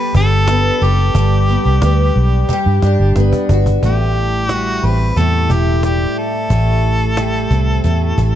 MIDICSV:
0, 0, Header, 1, 5, 480
1, 0, Start_track
1, 0, Tempo, 668896
1, 825, Time_signature, 4, 2, 24, 8
1, 5994, End_track
2, 0, Start_track
2, 0, Title_t, "Harmonica"
2, 0, Program_c, 0, 22
2, 0, Note_on_c, 0, 71, 106
2, 109, Note_off_c, 0, 71, 0
2, 118, Note_on_c, 0, 69, 103
2, 601, Note_on_c, 0, 67, 81
2, 612, Note_off_c, 0, 69, 0
2, 2272, Note_off_c, 0, 67, 0
2, 2767, Note_on_c, 0, 67, 88
2, 3226, Note_off_c, 0, 67, 0
2, 3226, Note_on_c, 0, 66, 88
2, 3484, Note_on_c, 0, 71, 94
2, 3495, Note_off_c, 0, 66, 0
2, 3718, Note_on_c, 0, 69, 87
2, 3729, Note_off_c, 0, 71, 0
2, 3960, Note_on_c, 0, 67, 81
2, 3971, Note_off_c, 0, 69, 0
2, 4190, Note_off_c, 0, 67, 0
2, 4195, Note_on_c, 0, 67, 73
2, 4435, Note_on_c, 0, 69, 78
2, 4445, Note_off_c, 0, 67, 0
2, 5994, Note_off_c, 0, 69, 0
2, 5994, End_track
3, 0, Start_track
3, 0, Title_t, "Twelve-string acoustic guitar"
3, 0, Program_c, 1, 25
3, 0, Note_on_c, 1, 55, 86
3, 0, Note_on_c, 1, 59, 62
3, 0, Note_on_c, 1, 69, 67
3, 110, Note_on_c, 1, 62, 59
3, 351, Note_off_c, 1, 59, 0
3, 354, Note_on_c, 1, 59, 62
3, 578, Note_off_c, 1, 69, 0
3, 586, Note_on_c, 1, 69, 65
3, 826, Note_off_c, 1, 55, 0
3, 829, Note_on_c, 1, 55, 81
3, 874, Note_off_c, 1, 69, 0
3, 1068, Note_off_c, 1, 59, 0
3, 1071, Note_on_c, 1, 59, 57
3, 1304, Note_off_c, 1, 59, 0
3, 1312, Note_on_c, 1, 59, 65
3, 1790, Note_off_c, 1, 55, 0
3, 1793, Note_on_c, 1, 55, 80
3, 2031, Note_off_c, 1, 62, 0
3, 2034, Note_on_c, 1, 62, 61
3, 2266, Note_off_c, 1, 59, 0
3, 2274, Note_on_c, 1, 59, 66
3, 2514, Note_on_c, 1, 66, 58
3, 2751, Note_on_c, 1, 45, 72
3, 2797, Note_off_c, 1, 59, 0
3, 2797, Note_off_c, 1, 62, 0
3, 2797, Note_off_c, 1, 66, 0
3, 3230, Note_off_c, 1, 55, 0
3, 3233, Note_on_c, 1, 55, 53
3, 3473, Note_on_c, 1, 60, 54
3, 3704, Note_off_c, 1, 45, 0
3, 3712, Note_on_c, 1, 45, 72
3, 3951, Note_on_c, 1, 64, 52
3, 4186, Note_off_c, 1, 55, 0
3, 4189, Note_on_c, 1, 55, 59
3, 4656, Note_off_c, 1, 45, 0
3, 4665, Note_on_c, 1, 45, 74
3, 5147, Note_off_c, 1, 55, 0
3, 5150, Note_on_c, 1, 55, 55
3, 5386, Note_off_c, 1, 60, 0
3, 5394, Note_on_c, 1, 60, 50
3, 5616, Note_off_c, 1, 45, 0
3, 5625, Note_on_c, 1, 45, 75
3, 5863, Note_off_c, 1, 64, 0
3, 5872, Note_on_c, 1, 64, 53
3, 5994, Note_off_c, 1, 45, 0
3, 5994, Note_off_c, 1, 55, 0
3, 5994, Note_off_c, 1, 60, 0
3, 5994, Note_off_c, 1, 64, 0
3, 5994, End_track
4, 0, Start_track
4, 0, Title_t, "Fingered electric bass"
4, 0, Program_c, 2, 33
4, 106, Note_on_c, 2, 31, 100
4, 499, Note_off_c, 2, 31, 0
4, 586, Note_on_c, 2, 30, 80
4, 782, Note_off_c, 2, 30, 0
4, 824, Note_on_c, 2, 31, 98
4, 1119, Note_off_c, 2, 31, 0
4, 1187, Note_on_c, 2, 36, 77
4, 1285, Note_off_c, 2, 36, 0
4, 1305, Note_on_c, 2, 38, 91
4, 1502, Note_off_c, 2, 38, 0
4, 1548, Note_on_c, 2, 35, 80
4, 1743, Note_off_c, 2, 35, 0
4, 1910, Note_on_c, 2, 43, 93
4, 2006, Note_off_c, 2, 43, 0
4, 2027, Note_on_c, 2, 43, 85
4, 2124, Note_off_c, 2, 43, 0
4, 2150, Note_on_c, 2, 31, 78
4, 2246, Note_off_c, 2, 31, 0
4, 2269, Note_on_c, 2, 31, 75
4, 2365, Note_off_c, 2, 31, 0
4, 2507, Note_on_c, 2, 31, 80
4, 2703, Note_off_c, 2, 31, 0
4, 2746, Note_on_c, 2, 33, 83
4, 3437, Note_off_c, 2, 33, 0
4, 3469, Note_on_c, 2, 33, 70
4, 3664, Note_off_c, 2, 33, 0
4, 3704, Note_on_c, 2, 40, 80
4, 3945, Note_on_c, 2, 28, 86
4, 3956, Note_off_c, 2, 40, 0
4, 4340, Note_off_c, 2, 28, 0
4, 4666, Note_on_c, 2, 33, 87
4, 5359, Note_off_c, 2, 33, 0
4, 5386, Note_on_c, 2, 36, 73
4, 5584, Note_off_c, 2, 36, 0
4, 5628, Note_on_c, 2, 40, 82
4, 5826, Note_off_c, 2, 40, 0
4, 5868, Note_on_c, 2, 33, 77
4, 5994, Note_off_c, 2, 33, 0
4, 5994, End_track
5, 0, Start_track
5, 0, Title_t, "Cajon"
5, 104, Note_on_c, 9, 36, 101
5, 176, Note_off_c, 9, 36, 0
5, 341, Note_on_c, 9, 38, 114
5, 413, Note_off_c, 9, 38, 0
5, 585, Note_on_c, 9, 38, 25
5, 656, Note_off_c, 9, 38, 0
5, 702, Note_on_c, 9, 38, 25
5, 774, Note_off_c, 9, 38, 0
5, 824, Note_on_c, 9, 36, 109
5, 896, Note_off_c, 9, 36, 0
5, 1065, Note_on_c, 9, 38, 32
5, 1137, Note_off_c, 9, 38, 0
5, 1179, Note_on_c, 9, 38, 30
5, 1251, Note_off_c, 9, 38, 0
5, 1304, Note_on_c, 9, 38, 101
5, 1376, Note_off_c, 9, 38, 0
5, 1540, Note_on_c, 9, 38, 33
5, 1612, Note_off_c, 9, 38, 0
5, 1785, Note_on_c, 9, 38, 53
5, 1787, Note_on_c, 9, 36, 87
5, 1856, Note_off_c, 9, 38, 0
5, 1859, Note_off_c, 9, 36, 0
5, 2026, Note_on_c, 9, 38, 66
5, 2098, Note_off_c, 9, 38, 0
5, 2147, Note_on_c, 9, 38, 27
5, 2219, Note_off_c, 9, 38, 0
5, 2265, Note_on_c, 9, 38, 76
5, 2337, Note_off_c, 9, 38, 0
5, 2387, Note_on_c, 9, 36, 78
5, 2458, Note_off_c, 9, 36, 0
5, 2506, Note_on_c, 9, 36, 94
5, 2578, Note_off_c, 9, 36, 0
5, 2627, Note_on_c, 9, 36, 91
5, 2699, Note_off_c, 9, 36, 0
5, 2747, Note_on_c, 9, 36, 101
5, 2818, Note_off_c, 9, 36, 0
5, 2990, Note_on_c, 9, 38, 28
5, 3062, Note_off_c, 9, 38, 0
5, 3224, Note_on_c, 9, 38, 84
5, 3295, Note_off_c, 9, 38, 0
5, 3460, Note_on_c, 9, 38, 28
5, 3532, Note_off_c, 9, 38, 0
5, 3706, Note_on_c, 9, 36, 73
5, 3778, Note_off_c, 9, 36, 0
5, 3946, Note_on_c, 9, 36, 86
5, 4018, Note_off_c, 9, 36, 0
5, 4184, Note_on_c, 9, 38, 88
5, 4256, Note_off_c, 9, 38, 0
5, 4426, Note_on_c, 9, 38, 24
5, 4497, Note_off_c, 9, 38, 0
5, 4546, Note_on_c, 9, 38, 23
5, 4618, Note_off_c, 9, 38, 0
5, 4666, Note_on_c, 9, 36, 93
5, 4738, Note_off_c, 9, 36, 0
5, 4907, Note_on_c, 9, 38, 27
5, 4979, Note_off_c, 9, 38, 0
5, 5146, Note_on_c, 9, 38, 90
5, 5218, Note_off_c, 9, 38, 0
5, 5387, Note_on_c, 9, 36, 76
5, 5459, Note_off_c, 9, 36, 0
5, 5629, Note_on_c, 9, 36, 72
5, 5700, Note_off_c, 9, 36, 0
5, 5869, Note_on_c, 9, 36, 84
5, 5940, Note_off_c, 9, 36, 0
5, 5994, End_track
0, 0, End_of_file